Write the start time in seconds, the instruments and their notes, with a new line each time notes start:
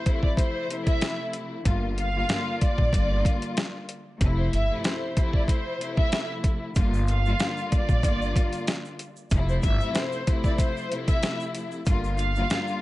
Already playing: violin section C5
0.05 string section C3 F3 A3 E4, kick, closed hi-hat
0.23 violin section D5, kick
0.37 violin section C5, kick, closed hi-hat
0.69 string section C3 F3 A3 E4, closed hi-hat
0.87 violin section E5, kick, closed hi-hat
1.01 snare, closed hi-hat
1.33 closed hi-hat
1.63 upright bass G1, string section D3 G3 A#3 F4, kick, closed hi-hat
1.97 violin section F5, closed hi-hat
2.14 string section D3 G3 A#3 F4
2.28 string section D3 G3 A#3 F4, snare, closed hi-hat
2.61 violin section D5, kick, closed hi-hat
2.78 upright bass A#1, kick
2.92 upright bass G1, string section D3 G3 A#3 F4, kick, closed hi-hat
3.25 kick, closed hi-hat
3.42 closed hi-hat
3.57 snare, closed hi-hat
3.89 closed hi-hat
4.21 upright bass F1, string section C3 F3 A3 E4, kick, closed hi-hat
4.38 violin section C5
4.53 upright bass G1, violin section E5, closed hi-hat
4.69 string section C3 F3 A3 E4
4.84 violin section C5, snare, closed hi-hat
5.16 string section C3 F3 A3 E4, kick, closed hi-hat
5.33 violin section D5, kick
5.47 violin section C5, kick, closed hi-hat
5.79 string section C3 F3 A3 E4, closed hi-hat
5.97 violin section E5, kick
6.12 snare, closed hi-hat
6.44 kick, closed hi-hat
6.74 upright bass G1, string section D3 G3 A#3 F4, kick, closed hi-hat, shaker
6.94 shaker
7.07 violin section F5, closed hi-hat, shaker
7.25 string section D3 G3 A#3 F4, shaker
7.39 string section D3 G3 A#3 F4, snare, closed hi-hat, shaker
7.57 shaker
7.71 violin section D5, kick, closed hi-hat
7.89 upright bass A#1, kick, shaker
8.03 upright bass G1, string section D3 G3 A#3 F4, kick, closed hi-hat, shaker
8.22 shaker
8.36 kick, closed hi-hat
8.53 closed hi-hat, shaker
8.67 snare, closed hi-hat, shaker
8.85 shaker
8.99 closed hi-hat, shaker
9.16 shaker
9.30 upright bass F1, string section C3 F3 A3 E4, kick, closed hi-hat, shaker
9.49 violin section C5, shaker
9.62 upright bass G1, violin section E5, kick, closed hi-hat, shaker
9.80 string section C3 F3 A3 E4, shaker
9.95 violin section C5, snare, closed hi-hat, shaker
10.12 shaker
10.27 string section C3 F3 A3 E4, kick, closed hi-hat
10.44 violin section D5, kick, shaker
10.58 violin section C5, kick, closed hi-hat, shaker
10.77 shaker
10.90 string section C3 F3 A3 E4, closed hi-hat
11.08 violin section E5, kick, closed hi-hat, shaker
11.23 snare, closed hi-hat, shaker
11.40 shaker
11.55 closed hi-hat, shaker
11.72 shaker
11.85 upright bass G1, string section D3 G3 A#3 F4, kick, closed hi-hat, shaker
12.04 shaker
12.18 violin section F5, closed hi-hat, shaker
12.36 string section D3 G3 A#3 F4, shaker
12.49 string section D3 G3 A#3 F4, snare, closed hi-hat, shaker
12.67 shaker